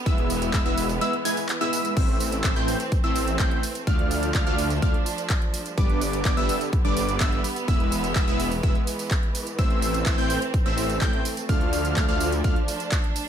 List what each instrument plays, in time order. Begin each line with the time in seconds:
Already playing: string section B3
0.06 detuned saw bass E1, string section E3 G#3, supersaw synth G#3 B3 E4 B4 E5, digital synth lead E6, kick, closed hi-hat, tambourine
0.18 closed hi-hat
0.30 open hi-hat, tambourine
0.42 closed hi-hat, tambourine
0.53 detuned saw bass E1, supersaw synth G#3 B3 E4 B4 E5, digital synth lead E6, kick, clap, closed hi-hat, tambourine
0.66 detuned saw bass E1, supersaw synth G#3 B3 E4 B4 E5, digital synth lead E6, closed hi-hat
0.78 open hi-hat, tambourine
0.89 open hi-hat, tambourine
1.01 supersaw synth G#3 B3 E4 B4 E5, digital synth lead E6, closed hi-hat, tambourine
1.13 closed hi-hat
1.25 supersaw synth G#3 B3 E4 B4 G#5, digital synth lead G#6, open hi-hat, tambourine
1.37 open hi-hat, tambourine
1.49 clap, closed hi-hat, tambourine
1.61 supersaw synth G#3 B3 E4 B4 E5, digital synth lead E6, closed hi-hat
1.73 open hi-hat, tambourine
1.85 closed hi-hat, tambourine
1.97 detuned saw bass A1, supersaw synth A3 C4 E4 C5 E5, string section A3 C4, digital synth lead E6, kick, closed hi-hat, crash, tambourine
2.09 closed hi-hat
2.20 open hi-hat, tambourine
2.32 closed hi-hat, tambourine
2.44 detuned saw bass A1, supersaw synth A3 C4 E4 C5 E5, digital synth lead E6, kick, clap, closed hi-hat, tambourine
2.56 detuned saw bass A1, supersaw synth A3 C4 E4 C5 G5, digital synth lead G6, closed hi-hat
2.68 open hi-hat, tambourine
2.80 closed hi-hat, tambourine
2.92 kick, closed hi-hat, tambourine
3.04 detuned saw bass A1, supersaw synth A3 C4 E4 C5 E5, digital synth lead E6, closed hi-hat
3.16 open hi-hat, tambourine
3.28 closed hi-hat, tambourine
3.39 detuned saw bass A1, supersaw synth A3 C4 E4 C5 G5, digital synth lead G6, kick, clap, closed hi-hat, tambourine
3.51 closed hi-hat
3.63 open hi-hat, tambourine
3.75 closed hi-hat, tambourine
3.87 detuned saw bass D2, string section F3 D4, supersaw synth A3 D4 F4 D5 F5, digital synth lead F6, kick, closed hi-hat, tambourine
3.99 closed hi-hat
4.11 open hi-hat, tambourine
4.23 closed hi-hat, tambourine
4.34 detuned saw bass D2, supersaw synth A3 D4 F4 D5 F5, digital synth lead F6, kick, clap, closed hi-hat, tambourine
4.47 detuned saw bass D2, supersaw synth A3 D4 F4 D5 F5, digital synth lead F6, closed hi-hat
4.58 open hi-hat, tambourine
4.70 closed hi-hat, tambourine
4.82 detuned saw bass D2, supersaw synth A3 D4 F4 D5 F5, digital synth lead F6, kick, closed hi-hat, tambourine
4.94 closed hi-hat
5.06 open hi-hat, tambourine
5.18 closed hi-hat, tambourine
5.30 kick, clap, closed hi-hat, tambourine
5.42 closed hi-hat
5.54 open hi-hat, tambourine
5.66 closed hi-hat, tambourine
5.78 detuned saw bass G1, string section D3 G3 B3, supersaw synth G3 B3 D4 B4 D5, digital synth lead D6, kick, closed hi-hat, tambourine
5.90 closed hi-hat
6.01 open hi-hat, tambourine
6.13 closed hi-hat, tambourine
6.25 detuned saw bass G1, supersaw synth G3 B3 D4 B4 D5, digital synth lead D6, kick, clap, closed hi-hat, tambourine
6.37 detuned saw bass G1, supersaw synth G3 B3 D4 B4 E5, digital synth lead E6, closed hi-hat
6.49 open hi-hat, tambourine
6.61 closed hi-hat, tambourine
6.73 kick, closed hi-hat, tambourine
6.85 detuned saw bass G1, supersaw synth G3 B3 D4 B4 D5, digital synth lead D6, closed hi-hat
6.97 open hi-hat, tambourine
7.09 closed hi-hat, tambourine
7.20 detuned saw bass G1, supersaw synth G3 B3 D4 B4 E5, digital synth lead E6, kick, clap, closed hi-hat, tambourine
7.32 closed hi-hat
7.44 open hi-hat, tambourine
7.56 closed hi-hat, tambourine
7.68 detuned saw bass E1, string section E3 G#3, supersaw synth G#3 B3 E4 B4 E5, digital synth lead E6, kick, closed hi-hat, tambourine
7.80 closed hi-hat
7.92 open hi-hat, tambourine
8.04 closed hi-hat, tambourine
8.15 detuned saw bass E1, supersaw synth G#3 B3 E4 B4 E5, digital synth lead E6, kick, clap, closed hi-hat, tambourine
8.28 detuned saw bass E1, supersaw synth G#3 B3 E4 B4 E5, digital synth lead E6, closed hi-hat
8.40 open hi-hat, tambourine
8.52 open hi-hat, tambourine
8.63 detuned saw bass E1, supersaw synth G#3 B3 E4 B4 E5, digital synth lead E6, kick, closed hi-hat, tambourine
8.75 closed hi-hat
8.87 open hi-hat, tambourine
8.99 open hi-hat, tambourine
9.11 kick, clap, closed hi-hat, tambourine
9.23 closed hi-hat
9.35 open hi-hat, tambourine
9.47 closed hi-hat, tambourine
9.59 detuned saw bass A1, supersaw synth A3 C4 E4 C5 E5, string section A3 C4, digital synth lead E6, kick, closed hi-hat, tambourine
9.70 closed hi-hat
9.82 open hi-hat, tambourine
9.94 closed hi-hat, tambourine
10.06 detuned saw bass A1, supersaw synth A3 C4 E4 C5 E5, digital synth lead E6, kick, clap, closed hi-hat, tambourine
10.18 detuned saw bass A1, supersaw synth A3 C4 E4 C5 G5, digital synth lead G6, closed hi-hat
10.30 open hi-hat, tambourine
10.42 closed hi-hat, tambourine
10.54 kick, closed hi-hat, tambourine
10.66 detuned saw bass A1, supersaw synth A3 C4 E4 C5 E5, digital synth lead E6, closed hi-hat
10.78 open hi-hat, tambourine
10.90 closed hi-hat, tambourine
11.01 detuned saw bass A1, supersaw synth A3 C4 E4 C5 G5, digital synth lead G6, kick, clap, closed hi-hat, tambourine
11.13 closed hi-hat
11.25 open hi-hat, tambourine
11.37 closed hi-hat, tambourine
11.49 detuned saw bass D2, string section F3 D4, supersaw synth A3 D4 F4 D5 F5, digital synth lead F6, kick, closed hi-hat, tambourine
11.61 closed hi-hat
11.73 open hi-hat, tambourine
11.85 closed hi-hat, tambourine
11.96 detuned saw bass D2, supersaw synth A3 D4 F4 D5 F5, digital synth lead F6, kick, clap, closed hi-hat, tambourine
12.09 detuned saw bass D2, supersaw synth A3 D4 F4 D5 F5, digital synth lead F6, closed hi-hat
12.20 open hi-hat, tambourine
12.32 closed hi-hat, tambourine
12.44 detuned saw bass D2, supersaw synth A3 D4 F4 D5 F5, digital synth lead F6, kick, closed hi-hat, tambourine
12.56 closed hi-hat
12.68 open hi-hat, tambourine
12.80 closed hi-hat, tambourine
12.92 kick, clap, closed hi-hat, tambourine
13.04 closed hi-hat
13.16 open hi-hat, tambourine